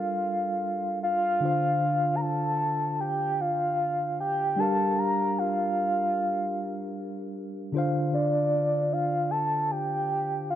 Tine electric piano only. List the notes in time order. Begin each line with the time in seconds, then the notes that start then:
Already playing: G3 D4 A4 A#4 F5
1.40 D3 D4 F4
1.45 C5 F5
4.56 G3 D4 G4
4.61 A#4 F5
7.72 D3 D4 F4
7.77 C5 F5